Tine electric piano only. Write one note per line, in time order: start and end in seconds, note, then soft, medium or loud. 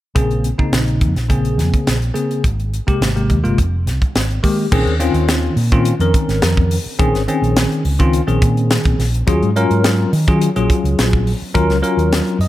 0.15 0.48 C#3 medium
0.15 0.48 A#3 medium
0.15 0.48 C4 medium
0.15 0.48 G#4 medium
0.58 1.13 C#3 medium
0.58 1.13 A#3 medium
0.58 1.13 C4 medium
0.58 1.13 D#4 medium
1.29 1.95 C#3 medium
1.29 1.95 A#3 medium
1.29 1.95 C4 medium
1.29 1.95 G#4 medium
2.14 2.43 C#3 medium
2.14 2.43 A#3 medium
2.14 2.43 C4 medium
2.14 2.43 G#4 medium
2.87 3.08 C3 medium
2.87 3.08 G#3 medium
2.87 3.09 A#3 medium
2.87 3.09 G4 medium
3.16 3.37 C3 medium
3.16 3.37 G#3 medium
3.16 3.37 A#3 medium
3.16 3.37 G4 medium
3.43 3.57 C3 medium
3.43 3.58 G#3 medium
3.43 3.58 A#3 medium
3.43 3.58 F4 medium
4.43 4.65 D#3 medium
4.43 4.65 G#3 medium
4.43 4.65 A#3 medium
4.43 4.65 G4 medium
4.72 4.94 D#3 medium
4.72 4.94 C4 medium
4.72 4.94 C#4 medium
4.72 4.94 G#4 loud
4.99 5.54 D#3 medium
4.99 5.54 C4 medium
4.99 5.54 C#4 medium
4.99 5.54 F4 medium
5.72 5.93 D#3 medium
5.72 5.93 C4 medium
5.72 5.94 C#4 medium
5.72 5.94 F4 loud
6.01 6.76 D#3 medium
6.01 6.76 C4 medium
6.01 6.76 C#4 medium
6.01 6.76 A#4 medium
6.99 7.21 D#3 medium
6.99 7.21 C4 medium
6.99 7.21 C#4 medium
6.99 7.21 G#4 loud
7.28 7.82 D#3 medium
7.28 7.82 C4 medium
7.28 7.82 C#4 medium
7.28 7.82 G#4 medium
7.99 8.21 D#3 medium
7.99 8.21 C4 medium
7.99 8.21 C#4 medium
7.99 8.21 F4 loud
8.27 9.03 D#3 medium
8.27 9.03 C4 medium
8.27 9.03 C#4 medium
8.27 9.03 G#4 medium
9.27 9.49 F#3 loud
9.27 9.49 C#4 medium
9.27 9.49 F4 medium
9.27 9.49 G#4 loud
9.56 10.10 F#3 medium
9.56 10.10 C#4 medium
9.56 10.10 F4 medium
9.56 10.10 A#4 loud
10.28 10.49 F#3 loud
10.28 10.49 C#4 medium
10.28 10.49 F4 medium
10.28 10.49 G#4 medium
10.56 11.31 F#3 medium
10.56 11.31 C#4 medium
10.56 11.31 F4 medium
10.56 11.31 G#4 medium
11.54 11.77 F#3 medium
11.54 11.77 C#4 medium
11.54 11.77 F4 medium
11.54 11.77 A#4 loud
11.82 12.37 F#3 medium
11.82 12.37 C#4 medium
11.82 12.37 F4 medium
11.82 12.37 A#4 medium
12.41 12.48 D#5 medium